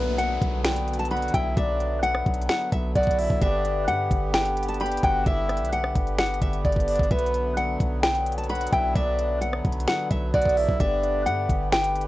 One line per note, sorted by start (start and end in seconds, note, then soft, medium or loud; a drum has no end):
0.00 0.39 B1 loud
0.00 7.07 D3 medium
0.00 3.38 F#3 medium
0.00 7.07 B3 medium
0.00 0.16 B4 loud
0.00 0.16 E5 loud
0.00 downlifter medium
0.18 0.62 F#5 medium
0.18 closed hi-hat medium
0.42 1.30 B1 loud
0.42 kick loud
0.42 closed hi-hat medium
0.64 0.97 G5 medium
0.64 finger snap loud
0.64 snare loud
0.64 closed hi-hat soft
0.76 closed hi-hat medium
0.88 closed hi-hat medium
0.94 closed hi-hat medium
0.99 1.09 A5 medium
0.99 closed hi-hat medium
1.05 closed hi-hat medium
1.11 1.33 F#5 medium
1.11 1.31 B5 medium
1.11 closed hi-hat soft
1.17 closed hi-hat medium
1.22 closed hi-hat medium
1.28 closed hi-hat medium
1.34 1.56 B1 loud
1.34 1.56 E5 medium
1.34 1.54 G5 medium
1.34 kick loud
1.34 closed hi-hat medium
1.57 2.23 B1 loud
1.57 2.00 D5 loud
1.57 2.00 E5 loud
1.57 kick loud
1.57 closed hi-hat medium
1.80 closed hi-hat medium
2.03 2.46 F#5 medium
2.03 closed hi-hat medium
2.15 cross-stick medium
2.26 2.48 B1 loud
2.26 kick loud
2.26 closed hi-hat soft
2.34 closed hi-hat medium
2.42 closed hi-hat medium
2.49 2.69 F#5 medium
2.49 finger snap loud
2.49 snare loud
2.49 closed hi-hat medium
2.72 2.94 B1 loud
2.72 2.92 E5 medium
2.72 kick medium
2.72 closed hi-hat medium
2.95 3.29 B1 loud
2.95 3.39 D5 medium
2.95 3.17 F#5 medium
2.95 kick loud
2.95 closed hi-hat medium
3.03 kick loud
3.03 closed hi-hat medium
3.11 closed hi-hat medium
3.19 3.41 E5 medium
3.19 open hi-hat medium
3.30 3.41 B1 loud
3.30 kick loud
3.42 3.89 G1 loud
3.42 7.07 G4 medium
3.42 3.85 D5 loud
3.42 3.85 E5 loud
3.42 kick loud
3.42 closed hi-hat medium
3.65 closed hi-hat medium
3.88 4.10 G2 loud
3.88 4.31 F#5 medium
3.88 closed hi-hat medium
4.11 4.99 G1 loud
4.11 kick loud
4.11 closed hi-hat medium
4.34 4.67 G5 medium
4.34 finger snap loud
4.34 snare loud
4.34 closed hi-hat soft
4.45 closed hi-hat medium
4.57 closed hi-hat medium
4.63 closed hi-hat medium
4.69 4.79 A5 medium
4.69 closed hi-hat medium
4.74 closed hi-hat medium
4.80 5.02 G5 medium
4.80 5.01 B5 loud
4.80 closed hi-hat soft
4.86 closed hi-hat medium
4.92 closed hi-hat medium
4.97 closed hi-hat medium
5.03 5.25 G1 loud
5.03 5.25 F#5 medium
5.03 5.24 G5 medium
5.03 kick loud
5.03 closed hi-hat medium
5.26 5.62 G1 loud
5.26 5.70 E5 loud
5.26 kick loud
5.26 closed hi-hat medium
5.49 cross-stick medium
5.49 closed hi-hat medium
5.57 5.94 B1 loud
5.57 closed hi-hat medium
5.65 closed hi-hat medium
5.73 6.16 F#5 medium
5.73 closed hi-hat medium
5.84 cross-stick medium
5.95 6.40 G1 loud
5.95 kick medium
5.95 closed hi-hat medium
6.07 closed hi-hat soft
6.18 6.39 F#5 loud
6.18 finger snap loud
6.18 snare loud
6.18 closed hi-hat soft
6.26 closed hi-hat medium
6.34 closed hi-hat medium
6.42 6.64 G1 loud
6.42 6.62 E5 medium
6.42 kick medium
6.42 closed hi-hat medium
6.53 closed hi-hat soft
6.65 6.98 G1 loud
6.65 7.08 D5 medium
6.65 kick loud
6.65 closed hi-hat soft
6.72 kick loud
6.72 closed hi-hat medium
6.80 closed hi-hat medium
6.88 7.10 D5 medium
6.88 closed hi-hat medium
6.88 open hi-hat medium
6.96 7.10 G1 loud
6.96 kick medium
6.96 closed hi-hat medium
7.03 closed hi-hat medium
7.11 7.77 B1 loud
7.11 12.08 D3 medium
7.11 10.76 F#3 medium
7.11 10.76 B3 medium
7.11 7.54 B4 loud
7.11 7.54 E5 loud
7.11 kick loud
7.11 closed hi-hat medium
7.19 closed hi-hat medium
7.26 closed hi-hat medium
7.34 closed hi-hat medium
7.57 8.00 F#5 medium
7.57 closed hi-hat medium
7.80 8.69 B1 loud
7.80 kick loud
7.80 closed hi-hat medium
8.03 8.36 G5 medium
8.03 finger snap loud
8.03 snare loud
8.03 closed hi-hat soft
8.15 closed hi-hat medium
8.26 closed hi-hat medium
8.32 closed hi-hat medium
8.38 8.48 A5 medium
8.38 closed hi-hat medium
8.44 closed hi-hat medium
8.49 8.71 F#5 medium
8.49 8.70 B5 loud
8.49 closed hi-hat soft
8.55 closed hi-hat medium
8.61 closed hi-hat medium
8.67 closed hi-hat medium
8.72 8.95 B1 loud
8.72 8.94 E5 medium
8.72 8.93 G5 medium
8.72 kick loud
8.72 closed hi-hat medium
8.96 9.62 B1 loud
8.96 9.39 D5 loud
8.96 9.39 E5 loud
8.96 kick loud
8.96 closed hi-hat medium
9.19 closed hi-hat medium
9.41 9.85 F#5 medium
9.41 closed hi-hat medium
9.53 cross-stick medium
9.65 9.87 B1 loud
9.65 kick loud
9.65 closed hi-hat soft
9.72 closed hi-hat medium
9.80 closed hi-hat medium
9.87 10.08 F#5 medium
9.87 finger snap loud
9.87 snare loud
9.87 closed hi-hat medium
10.11 10.33 B1 loud
10.11 10.31 E5 medium
10.11 kick medium
10.11 closed hi-hat medium
10.34 10.67 B1 loud
10.34 10.77 D5 medium
10.34 10.56 F#5 medium
10.34 kick loud
10.34 closed hi-hat medium
10.42 kick loud
10.42 closed hi-hat medium
10.49 closed hi-hat medium
10.57 10.79 E5 medium
10.57 open hi-hat medium
10.69 10.80 B1 loud
10.69 kick medium
10.80 11.28 G1 loud
10.80 12.08 B3 medium
10.80 12.08 G4 medium
10.80 11.23 D5 loud
10.80 11.24 E5 loud
10.80 kick loud
10.80 closed hi-hat medium
11.03 closed hi-hat medium
11.26 11.48 G2 loud
11.26 11.69 F#5 medium
11.26 closed hi-hat medium
11.49 12.08 G1 loud
11.49 kick loud
11.49 closed hi-hat medium
11.72 12.05 G5 medium
11.72 finger snap loud
11.72 snare loud
11.72 closed hi-hat soft
11.84 closed hi-hat medium
11.96 closed hi-hat medium
12.01 closed hi-hat medium